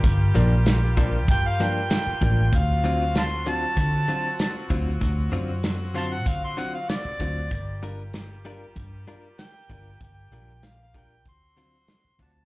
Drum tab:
HH |xxxxxxxx|xxxxxxxx|xxxxxxxx|xxxxxxxx|
TB |--x---x-|--x---x-|--x---x-|--x---x-|
SD |--o--oo-|--o---o-|--o---o-|--o---o-|
BD |o--oo--o|o---o--o|o---o--o|o---o--o|

HH |xxxxxxxx|
TB |--x---x-|
SD |--o--oo-|
BD |o--oo--o|